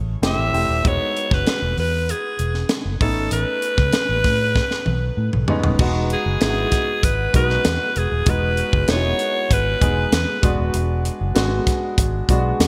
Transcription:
Already playing: A1 A3 C#4 E4 G#4
0.22 F1 A3 C4 E4 G4, snare, closed hi-hat
0.26 E5
0.38 A1
0.53 E1 A3 C4 E4 G4, open hi-hat
0.69 D#1
0.83 E1 G#3 B3 D#4 F#4, kick, closed hi-hat
0.88 C#5
1.17 closed hi-hat
1.31 F#1 B4, kick, snare
1.47 snare, closed hi-hat
1.62 E1
1.77 E2 B4, open hi-hat
2.09 G#4, closed hi-hat
2.39 E1, closed hi-hat
2.54 snare
2.69 snare, closed hi-hat
2.85 F#1
3.00 A1 A3 B3 C#4 D#4 A4, kick, open hi-hat
3.16 G#1
3.31 A1 B4, closed hi-hat
3.62 closed hi-hat
3.78 C#2, kick, snare
3.93 snare, closed hi-hat
4.09 A1
4.24 A2, kick, snare, open hi-hat
4.56 kick, snare
4.71 snare
4.86 B1, high tom
5.17 A2
5.33 B1, mid tom
5.48 G#3 B3 C#4 D#4, floor tom
5.64 D#1, floor tom
5.79 E1 G#3 B3 D#4 F#4, kick, crash
6.10 G#4, closed hi-hat
6.26 F#1
6.40 G#1 G#3 B3 D#4 E4 G#4, snare, closed hi-hat
6.47 F#4
6.72 kick, snare, closed hi-hat
7.03 G#1 B4, kick, closed hi-hat
7.33 B1 G#3 B3 D#4 F#4 B4, kick, closed hi-hat
7.50 snare
7.65 E2, snare, closed hi-hat
7.96 E1 G#4, closed hi-hat
8.12 D#1
8.26 E1 G#3 B3 D#4 F#4 B4, kick, closed hi-hat
8.57 closed hi-hat
8.73 F#1, kick
8.88 E1 G#3 B3 D#4 E4 C#5, snare, closed hi-hat
8.96 F#4
9.19 closed hi-hat
9.51 G#1 B4, kick, closed hi-hat
9.80 E1 G#3 B3 D#4 G#4, kick, closed hi-hat
10.12 E2 B4, snare, closed hi-hat
10.42 E1 G#3 B3 D4 F#4, kick, closed hi-hat
10.59 D#1
10.74 E1, closed hi-hat
11.05 closed hi-hat
11.21 F#1
11.35 G#1 G#3 B3 D4 F#4, snare, closed hi-hat
11.67 kick, snare, closed hi-hat
11.98 G#1, kick, closed hi-hat
12.28 B1 G#3 B3 D4 F#4, kick, closed hi-hat
12.60 E2, snare, closed hi-hat

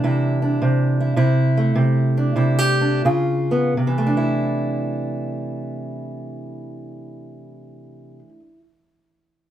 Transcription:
Already playing: E3 A3 D4
0.04 C3 E4
0.42 D4
0.62 C3
1.00 E4
1.16 C3 E4
1.57 A3
1.75 C3
2.17 D4
2.36 C3 E4
2.59 G4
2.81 D4
3.05 C#3 F4
3.51 B3
3.77 C3
3.87 E3
3.98 A3
4.07 D4
4.17 E4

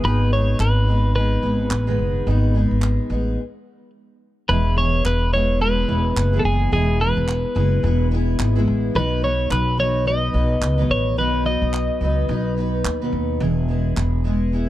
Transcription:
Already playing: G#4
0.03 G#1 G#2 D#3 G#3 B3 D#4 G#4 B4
0.31 G#3 B3 D#4 G#4 C#5
0.60 G#1 B4, clap
0.87 G#3 B3 D#4 G#4
1.15 G#3 B3 D#4 G#4 B4
1.42 G#1 G#3 B3 D#4 G#4
1.71 A1, clap
1.87 G#2 D#3 G#3 B3 D#4 G#4
1.99 F#1
2.27 G#1 G#2 D#3 G#3 B3 D#4 G#4
2.54 G#3 B3 D#4 G#4
2.71 G#1
2.82 clap
3.10 A1 G#3 B3 D#4 G#4
4.49 E1 E3 G#3 B3 E4 G#4 B4
4.76 G#3 B3 E4 G#4 C#5
5.05 E1 B4, clap
5.32 G#3 B3 E4 G#4 C#5
5.60 G#3 B3 E4 G#4 B4
5.88 E1 G#3 B3 E4 G#4
6.16 F#1, clap
6.33 E3 G#3 B3 E4 G#4
6.39 A4
6.44 F#1 G#4
6.72 E1 E3 G#3 B3 E4 G#4
6.99 G#3 B3 E4 G#4 B4
7.17 E1
7.28 clap
7.55 F#1 G#3 B3 E4 G#4
7.83 E1 G#3 B3 E4 G#4
8.11 G#3 B3 E4 G#4
8.39 G#1, clap
8.55 E3 G#3 B3 E4 G#4
8.67 A1
8.94 B1 B2 D#3 F#3 B3 D#4 B4
9.22 F#3 B3 D#4 B4 C#5
9.51 B1 B4, clap
9.78 F#3 B3 D#4 B4 C#5
10.05 F#3 B3 D#4 B4 D#5
10.33 B1 F#3 B3 D#4 B4
10.61 C#2, clap
10.78 B2 D#3 F#3 B3 D#4 B4
10.89 A1 C#5
11.17 B1 B2 D#3 F#3 B3 D#4 B4
11.45 F#3 B3 D#4 B4 D#5
11.62 B1
11.74 clap
12.01 C#2 F#3 B3 D#4 B4
12.28 B1 F#3 B3 D#4 B4
12.57 F#3 B3 D#4 B4
12.85 D#2, clap
13.01 B2 D#3 F#3 B3 D#4 B4
13.12 D#2
13.40 E1 E3 G#3 B3 E4 G#4
13.68 G#3 B3 E4 G#4
13.97 E1, clap
14.24 G#3 B3 E4 G#4
14.52 G#3 B3 E4 G#4

